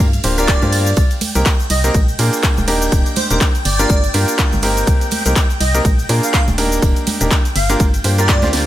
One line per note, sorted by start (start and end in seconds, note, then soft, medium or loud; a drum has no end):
0.00 0.20 G2 medium
0.00 0.98 F5 medium
0.00 high conga medium
0.13 closed hi-hat soft
0.13 tambourine soft
0.13 cabasa soft
0.24 0.58 D1 medium
0.24 0.36 A#3 medium
0.24 0.36 D4 medium
0.24 0.36 F4 medium
0.24 0.36 G4 medium
0.24 0.36 C5 medium
0.24 open hi-hat loud
0.24 ride medium
0.24 tambourine loud
0.38 0.47 A#3 medium
0.38 0.47 D4 medium
0.38 0.47 F4 medium
0.38 0.47 G4 medium
0.38 0.47 A#4 medium
0.38 1.03 D5 loud
0.38 closed hi-hat soft
0.38 tambourine soft
0.38 cabasa medium
0.48 0.59 A#3 loud
0.48 0.59 D4 medium
0.48 0.59 F4 medium
0.48 0.59 G4 medium
0.48 0.59 D5 loud
0.48 kick loud
0.48 clap loud
0.48 closed hi-hat medium
0.48 tambourine medium
0.48 cabasa medium
0.62 0.94 G2 loud
0.62 0.89 A#3 loud
0.62 0.89 D4 medium
0.62 0.89 F4 medium
0.62 0.89 G4 medium
0.62 0.89 C5 loud
0.62 tambourine soft
0.62 high conga medium
0.62 cabasa soft
0.73 open hi-hat loud
0.73 ride medium
0.73 tambourine loud
0.86 closed hi-hat soft
0.86 tambourine soft
0.86 cabasa medium
0.96 1.08 C2 loud
0.96 8.66 G5 medium
0.96 kick loud
0.96 closed hi-hat medium
0.96 tambourine medium
0.96 cabasa medium
1.10 closed hi-hat soft
1.10 tambourine soft
1.10 cabasa soft
1.21 open hi-hat loud
1.21 ride medium
1.21 tambourine loud
1.21 high conga medium
1.35 1.44 C2 loud
1.35 1.51 A#3 medium
1.35 1.51 C4 medium
1.35 1.51 D#4 medium
1.35 1.51 G4 medium
1.35 1.51 A#4 medium
1.35 closed hi-hat medium
1.35 tambourine soft
1.35 cabasa medium
1.46 kick loud
1.46 clap loud
1.46 closed hi-hat medium
1.46 tambourine medium
1.46 cabasa medium
1.60 tambourine soft
1.60 cabasa soft
1.70 1.90 C2 loud
1.70 1.79 D#5 medium
1.70 open hi-hat loud
1.70 ride medium
1.70 tambourine medium
1.84 1.93 A#3 loud
1.84 1.93 C4 medium
1.84 1.93 D#4 medium
1.84 1.93 G4 medium
1.84 1.93 A#4 loud
1.84 1.91 D#5 medium
1.84 closed hi-hat medium
1.84 tambourine soft
1.84 cabasa medium
1.94 2.15 A#1 loud
1.94 kick loud
1.94 closed hi-hat medium
1.94 tambourine medium
1.94 high conga medium
1.94 cabasa medium
2.09 tambourine soft
2.09 cabasa soft
2.19 2.30 A#2 loud
2.19 2.65 A#3 medium
2.19 2.65 D4 medium
2.19 2.65 F4 medium
2.19 2.65 G#4 medium
2.19 2.65 A#4 medium
2.19 open hi-hat loud
2.19 ride medium
2.19 tambourine medium
2.33 closed hi-hat soft
2.33 tambourine soft
2.33 cabasa medium
2.43 kick loud
2.43 clap loud
2.43 closed hi-hat medium
2.43 tambourine medium
2.43 cabasa medium
2.57 2.89 D#1 medium
2.57 tambourine soft
2.57 high conga medium
2.57 cabasa soft
2.68 3.27 A#3 loud
2.68 3.27 D4 medium
2.68 3.27 D#4 medium
2.68 3.27 G4 medium
2.68 3.27 A#4 loud
2.68 open hi-hat medium
2.68 ride medium
2.68 tambourine loud
2.82 closed hi-hat soft
2.82 tambourine soft
2.82 cabasa medium
2.92 3.03 D#1 loud
2.92 kick loud
2.92 closed hi-hat medium
2.92 tambourine soft
2.92 cabasa medium
3.06 closed hi-hat soft
3.06 tambourine soft
3.06 cabasa soft
3.16 3.25 C5 medium
3.16 open hi-hat loud
3.16 ride medium
3.16 tambourine medium
3.16 high conga medium
3.30 3.39 D#1 medium
3.30 3.46 A#3 medium
3.30 3.46 D4 medium
3.30 3.46 D#4 medium
3.30 3.46 G4 medium
3.30 3.46 A#4 medium
3.30 3.37 C5 medium
3.30 closed hi-hat medium
3.30 tambourine soft
3.30 cabasa medium
3.41 kick loud
3.41 clap loud
3.41 closed hi-hat medium
3.41 tambourine medium
3.41 cabasa medium
3.55 closed hi-hat soft
3.55 tambourine soft
3.55 cabasa soft
3.65 3.86 G1 loud
3.65 4.34 D5 loud
3.65 open hi-hat medium
3.65 ride medium
3.65 tambourine loud
3.79 3.95 A#3 loud
3.79 3.95 D4 medium
3.79 3.95 F4 medium
3.79 3.95 G4 medium
3.79 3.95 A#4 loud
3.79 closed hi-hat medium
3.79 tambourine soft
3.79 cabasa medium
3.89 4.10 G1 loud
3.89 kick loud
3.89 closed hi-hat medium
3.89 tambourine soft
3.89 high conga medium
3.89 cabasa medium
4.04 closed hi-hat soft
4.04 tambourine soft
4.04 cabasa soft
4.14 4.25 G2 loud
4.14 4.60 A#3 medium
4.14 4.60 D4 medium
4.14 4.60 F4 medium
4.14 4.60 G4 medium
4.14 4.60 A#4 loud
4.14 open hi-hat loud
4.14 ride medium
4.14 tambourine medium
4.28 closed hi-hat soft
4.28 tambourine soft
4.28 cabasa medium
4.38 kick loud
4.38 clap loud
4.38 closed hi-hat medium
4.38 tambourine soft
4.38 cabasa medium
4.52 4.84 G1 medium
4.52 tambourine soft
4.52 high conga medium
4.52 cabasa soft
4.62 5.22 A#3 loud
4.62 5.22 C4 medium
4.62 5.22 D#4 medium
4.62 5.22 G4 medium
4.62 5.22 A#4 loud
4.62 open hi-hat medium
4.62 ride medium
4.62 tambourine medium
4.77 closed hi-hat soft
4.77 tambourine soft
4.77 cabasa medium
4.87 4.98 C2 loud
4.87 kick loud
4.87 closed hi-hat medium
4.87 tambourine soft
4.87 cabasa medium
5.01 closed hi-hat soft
5.01 tambourine soft
5.01 cabasa soft
5.11 open hi-hat loud
5.11 ride medium
5.11 tambourine medium
5.11 high conga medium
5.26 5.34 C2 medium
5.26 5.41 A#3 medium
5.26 5.41 C4 medium
5.26 5.41 D#4 medium
5.26 5.41 G4 medium
5.26 5.41 A#4 medium
5.26 closed hi-hat medium
5.26 tambourine soft
5.26 cabasa medium
5.36 kick loud
5.36 clap loud
5.36 closed hi-hat medium
5.36 tambourine medium
5.36 cabasa medium
5.50 tambourine soft
5.50 cabasa soft
5.60 5.81 C2 loud
5.60 5.69 D#5 medium
5.60 open hi-hat medium
5.60 ride medium
5.60 tambourine medium
5.74 5.84 A#3 loud
5.74 5.84 C4 medium
5.74 5.84 D#4 medium
5.74 5.84 G4 medium
5.74 5.84 A#4 loud
5.74 5.81 D#5 medium
5.74 closed hi-hat medium
5.74 tambourine soft
5.74 cabasa medium
5.85 6.05 A#1 loud
5.85 kick loud
5.85 closed hi-hat medium
5.85 tambourine soft
5.85 high conga medium
5.85 cabasa medium
5.99 tambourine soft
5.99 cabasa soft
6.09 6.20 A#2 loud
6.09 6.56 A#3 medium
6.09 6.56 D4 medium
6.09 6.55 F4 medium
6.09 6.56 G#4 medium
6.09 6.56 A#4 medium
6.09 open hi-hat loud
6.09 ride medium
6.09 tambourine medium
6.23 6.30 F5 medium
6.23 closed hi-hat soft
6.23 tambourine soft
6.23 cabasa medium
6.34 6.43 F5 medium
6.34 kick loud
6.34 clap loud
6.34 closed hi-hat medium
6.34 tambourine medium
6.34 cabasa medium
6.48 6.79 D#1 medium
6.48 tambourine soft
6.48 high conga medium
6.48 cabasa soft
6.58 7.17 A#3 loud
6.58 7.17 D4 medium
6.58 7.17 D#4 medium
6.58 7.17 G4 medium
6.58 7.17 A#4 loud
6.58 open hi-hat medium
6.58 ride medium
6.58 tambourine medium
6.72 closed hi-hat soft
6.72 tambourine soft
6.72 cabasa medium
6.82 6.94 D#1 loud
6.82 kick loud
6.82 closed hi-hat medium
6.82 tambourine medium
6.82 cabasa medium
6.96 closed hi-hat soft
6.96 tambourine soft
6.96 cabasa soft
7.07 open hi-hat loud
7.07 ride medium
7.07 tambourine medium
7.07 high conga loud
7.20 7.29 D#1 loud
7.20 7.36 A#3 medium
7.20 7.36 D4 medium
7.20 7.36 D#4 medium
7.20 7.36 G4 medium
7.20 7.36 A#4 medium
7.20 closed hi-hat medium
7.20 tambourine soft
7.20 cabasa medium
7.31 kick loud
7.31 clap loud
7.31 closed hi-hat medium
7.31 tambourine medium
7.31 cabasa medium
7.45 closed hi-hat soft
7.45 tambourine soft
7.45 cabasa soft
7.56 7.76 G1 loud
7.56 7.74 F5 loud
7.56 open hi-hat medium
7.56 ride medium
7.56 tambourine medium
7.69 7.85 A#3 loud
7.69 7.85 D4 medium
7.69 7.85 F4 medium
7.69 7.85 G4 medium
7.69 7.85 A#4 loud
7.69 closed hi-hat medium
7.69 tambourine soft
7.69 cabasa medium
7.80 8.00 G1 loud
7.80 kick loud
7.80 closed hi-hat medium
7.80 tambourine medium
7.80 high conga medium
7.80 cabasa medium
7.94 closed hi-hat soft
7.94 tambourine soft
7.94 cabasa soft
8.04 8.44 G2 loud
8.04 8.16 A#3 medium
8.04 8.16 D4 medium
8.04 8.16 F4 medium
8.04 8.16 G4 medium
8.04 8.16 C5 medium
8.04 open hi-hat loud
8.04 ride medium
8.04 tambourine medium
8.18 8.27 A#3 medium
8.18 8.27 D4 medium
8.18 8.27 F4 medium
8.18 8.27 G4 medium
8.18 8.27 A#4 loud
8.18 8.66 D5 loud
8.18 closed hi-hat soft
8.18 tambourine soft
8.18 cabasa medium
8.29 8.39 A#3 loud
8.29 8.39 D4 medium
8.29 8.39 F4 medium
8.29 8.39 G4 medium
8.29 8.39 D5 loud
8.29 kick loud
8.29 clap loud
8.29 closed hi-hat medium
8.29 tambourine medium
8.29 cabasa medium
8.42 8.66 D2 medium
8.42 8.66 A#3 loud
8.42 8.66 D4 medium
8.42 8.66 F4 medium
8.42 8.66 G4 medium
8.42 8.66 C5 loud
8.42 snare medium
8.42 closed hi-hat soft
8.42 tambourine soft
8.42 high conga loud
8.42 cabasa soft
8.53 snare medium
8.53 open hi-hat medium
8.53 ride medium
8.53 tambourine medium